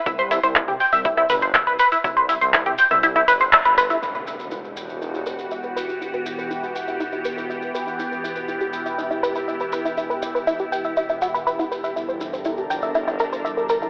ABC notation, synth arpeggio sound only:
X:1
M:4/4
L:1/16
Q:1/4=121
K:Em
V:1 name="Synth arpeggio sound"
E c E c E G g e E E B c e B B E | E c E c E G g e E E B c e B B E | E B E B E G g e E E B B e B B E | E B E B E G g e E E B B e B B E |
E B E B E G g e E E B B e B B E | E B E B E G g e E E F B B E B e | E c E c E G g e E E _B c e B B E |]